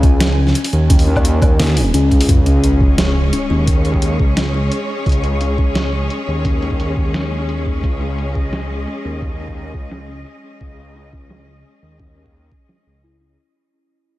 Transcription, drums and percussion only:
0.03 kick, closed hi-hat
0.20 snare, closed hi-hat
0.47 snare
0.55 closed hi-hat
0.64 open hi-hat
0.73 closed hi-hat
0.90 kick, closed hi-hat
0.99 open hi-hat
1.16 kick, low woodblock
1.25 closed hi-hat
1.42 kick, closed hi-hat, low woodblock
1.60 snare, open hi-hat
1.77 open hi-hat
1.94 closed hi-hat
2.11 kick, closed hi-hat
2.21 open hi-hat
2.29 kick, closed hi-hat
2.46 closed hi-hat
2.64 closed hi-hat
2.81 kick
2.98 snare, closed hi-hat
3.33 closed hi-hat
3.67 kick, closed hi-hat
3.85 closed hi-hat
3.94 kick
4.02 closed hi-hat
4.20 kick
4.37 snare, closed hi-hat
4.72 closed hi-hat
5.06 kick, closed hi-hat
5.09 closed hi-hat
5.12 closed hi-hat
5.24 closed hi-hat
5.41 closed hi-hat
5.58 kick
5.75 snare, closed hi-hat
6.10 closed hi-hat
6.45 kick, closed hi-hat
6.62 closed hi-hat
6.71 kick
6.80 closed hi-hat
6.97 kick
7.14 snare, closed hi-hat
7.49 closed hi-hat
7.66 kick
7.83 kick, closed hi-hat
8.01 closed hi-hat
8.18 closed hi-hat
8.35 kick
8.53 snare, closed hi-hat
8.87 closed hi-hat
9.22 kick, closed hi-hat
9.40 closed hi-hat
9.48 kick
9.57 closed hi-hat
9.74 kick
9.92 snare, closed hi-hat
10.26 closed hi-hat
10.61 kick, closed hi-hat
10.78 closed hi-hat
10.96 closed hi-hat
11.13 kick
11.30 snare, closed hi-hat
11.65 closed hi-hat
12.00 kick, closed hi-hat
12.26 kick
12.34 closed hi-hat
12.52 kick
12.69 snare, closed hi-hat
13.04 closed hi-hat

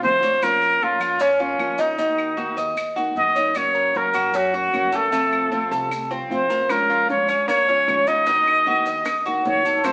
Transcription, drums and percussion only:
0.03 high bongo, low bongo, maracas
0.23 maracas
0.42 claves, maracas
0.62 maracas
0.82 maracas
1.00 claves, maracas
1.20 maracas
1.39 maracas
1.59 claves, maracas
1.78 maracas
1.98 maracas
2.18 claves, maracas
2.38 maracas
2.58 maracas
2.77 claves, maracas
2.97 maracas
3.16 maracas
3.36 maracas
3.55 claves, maracas
3.74 maracas
3.94 maracas
4.14 claves, maracas
4.34 maracas
4.54 maracas
4.73 claves, maracas
4.92 maracas
5.13 maracas
5.32 claves, maracas
5.52 maracas
5.72 maracas
5.91 claves, maracas
6.11 maracas
6.31 maracas
6.50 maracas
6.69 high bongo, claves, maracas
6.90 high bongo, maracas
7.09 high bongo, maracas
7.29 high bongo, claves, maracas
7.48 high bongo, maracas
7.68 high bongo, maracas
7.88 high bongo, low bongo, claves, maracas
8.07 maracas
8.26 high bongo, maracas
8.46 high bongo, claves, maracas
8.66 high bongo, maracas
8.86 high bongo, maracas
9.05 high bongo, claves, maracas
9.25 high bongo, maracas
9.45 high bongo, low bongo, maracas
9.65 maracas
9.84 high bongo, claves, maracas

